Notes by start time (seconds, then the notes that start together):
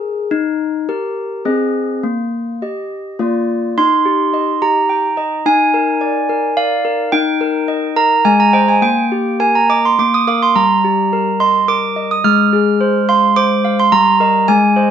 Already playing: G#4 A#4
0.31 D#4
0.89 G4 A#4
1.45 C4 G#4 D#5
2.03 A#3
2.62 G4 D#5
3.19 A#3 F4 D5
3.78 D#4 C6
4.05 G4
4.34 D#5
4.62 G4 A#5
4.89 G5
5.17 D#5
5.46 D#4 G#5
5.74 A#4
6.01 D5
6.29 A#4
6.57 D5 F5
6.85 A#4
7.12 D#4 G5
7.41 A#4
7.68 D#5
7.96 A#4 A#5
8.25 G#3 G#5
8.40 A#5
8.53 C5 D#5 G5
8.68 G#5
8.82 A#3 G5
9.12 G4
9.40 A#4 G#5
9.55 A#5
9.70 D#5 D6
9.85 C6
9.99 A#3 D6
10.14 D#6
10.27 A#4 F5 D6
10.42 C6
10.56 G3 A#5
10.84 G4
11.13 A#4
11.40 D#5 C6
11.68 A#4 D6
11.96 D#5
12.11 D#6
12.24 G#3 F6
12.53 G#4
12.81 C5
13.09 F5 C6
13.36 C5 D6
13.65 F5
13.80 C6
13.92 G3 A#5
14.20 A#4 D#5
14.48 G#3 G#5
14.76 C5 D#5